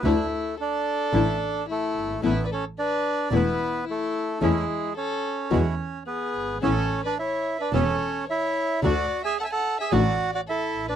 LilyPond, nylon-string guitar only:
\new Staff \with { instrumentName = "Nylon-string guitar" } { \time 4/4 \key a \major \tempo 4 = 109 <d a d' e'>8 r4. <d a d' e'>8 r4. | <e a b e'>8 r4. <e a b e'>8 r4. | <e a cis' e'>8 r4. <b, e gis b fis'>8 r4. | <e b cis' e'>8 r4. <e b cis' e'>8 r4. |
<d a d' fis'>8 r4. <d a d' fis'>8 r4. | }